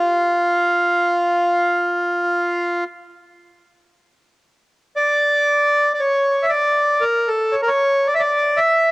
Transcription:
accordion
Already playing: F4
4.96 D5
5.94 D5
6.00 C#5
6.43 E5
6.49 D5
7.01 A#4
7.28 A4
7.52 C#5
7.62 A#4
7.68 C#5
8.07 D5
8.15 E5
8.20 D5
8.57 E5

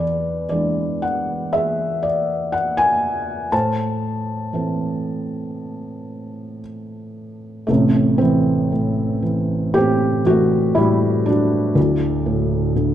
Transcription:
felt piano
Already playing: E2 G#4 B4 D5
0.49 E3 G#3 D4 D5
1.02 F#5
1.53 G#4 E5
2.03 D5
2.52 F#5
2.77 G#5
3.52 A2 C5 A5
4.53 E3 A3 C4
7.67 A1 A2 C3 A3
8.18 E3 C4
8.72 A2
9.22 E3
9.74 A2 C4 G4
10.25 E3 F#4
10.30 A3
10.75 A2 G3 E4
11.26 D4
11.30 F#3
11.75 D1 D2
12.26 A2
12.76 D3

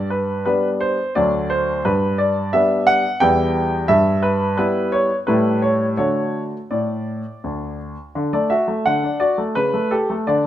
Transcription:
grand piano
Already playing: G2
0.10 B4
0.45 G3 B3 D4 B4
0.81 C5
1.15 D2 F#3 A3 D4 D5
1.50 C5
1.85 G2 B4
2.18 D5
2.53 G3 B3 D4 E5
2.87 F#5
3.20 E2 G3 B3 E4 G5
3.88 G2 E5
4.23 B4
4.57 G3 B3 E4 B4
4.92 C#5
5.27 A2 G3 A3 E4 B4
5.62 C#5
5.97 D3 A3 F#4 C#5
6.71 A2 D5
7.44 D2
8.15 D3
8.33 A3 D5
8.50 F#4 E5
8.68 A3
8.86 D3 F#5
9.03 D4
9.20 F#4 D5
9.38 A3
9.55 C#3 B4
9.74 A3
9.91 G4 A4
10.10 A3
10.27 D3 D5

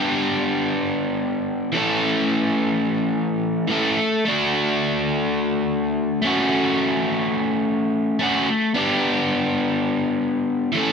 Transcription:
overdriven electric guitar
Already playing: B3 D4 G4
1.72 E3 A3 C#4
1.77 A4
3.68 E3 A3 C#4
3.72 A4
4.26 A3 D4
4.30 F#4
6.22 A3 C#4
6.27 F#4
8.19 A3 C#4 F#4
8.74 B3 D4 G4
10.72 E3 A3 C#4
10.77 A4

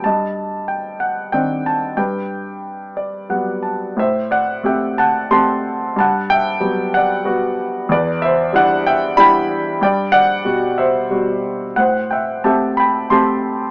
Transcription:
grand piano
0.04 G2 D#5 A5
0.68 G5
1.00 F#5
1.32 D#3 C4 D4 G5
1.66 A5
1.97 G2 B4 G5
2.97 D5
3.29 F#3 G3 B3 F#5
3.63 A5
3.97 A2 C5 E5
4.31 D5 F#5
4.63 A3 C4 G4 E5 G5
4.98 F#5 A5
5.31 A3 C4 G4 A5 C6
5.96 G2 A5
6.00 F#5
6.30 E5 G5
6.60 F#3 G3 B3
6.94 D5 F#5
7.25 G3 B3 F#4
7.89 E2 D5
7.93 B4
8.22 C5 E5
8.53 G3 D4 E4 F#5
8.58 D5
8.86 E5 G5
9.17 G3 D4 E4 G5 B5
9.81 G2 D5 G5
10.12 D5 F#5
10.45 B2 G3 F#4
10.78 C5 E5
11.11 B2 G3 F#4
11.76 A2 C5 F#5
12.11 E5 G5
12.44 A3 C4 G4 E5 A5
12.77 G5 B5
13.10 A3 C4 G4 A5 C6

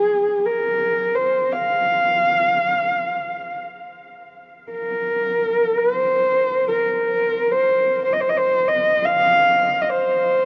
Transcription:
horsehead fiddle
Already playing: G#4
0.46 A#4
1.15 C5
1.52 F5
4.72 A#4
5.78 C5
6.68 A#4
7.52 C5
8.05 C5
8.13 D#5
8.21 C5
8.29 D#5
8.37 C5
8.68 D#5
9.06 F5
9.81 D#5
9.89 C5

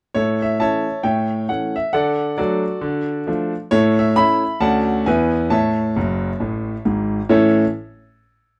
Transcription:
grand piano
0.14 A2 E4 A4 C#5
0.42 E5
0.60 E3 A3 C#4 C#5 E5 A5
1.03 A2 C#5 E5 G5
1.49 E3 A3 C#4 F#5
1.76 E5
1.93 D3 A4 D5 F#5
2.38 F#3 A3 D4 F#4 A4 D5
2.81 D3
3.27 F3 A3 D4
3.71 A2 E4 A4 C#5
3.99 E5
4.16 A3 C#4 E4 E5 B5
4.60 D2 A3 C#4 F#4 D5 F#5 A5
5.06 E2 E3 B3 E4 B4 E5 G#5
5.50 A2 C#5 E5 A5
5.96 F#1 F#2
6.40 A1 A2
6.85 G#1 G#2
7.29 A2 E3 C#4 E4 A4 C#5

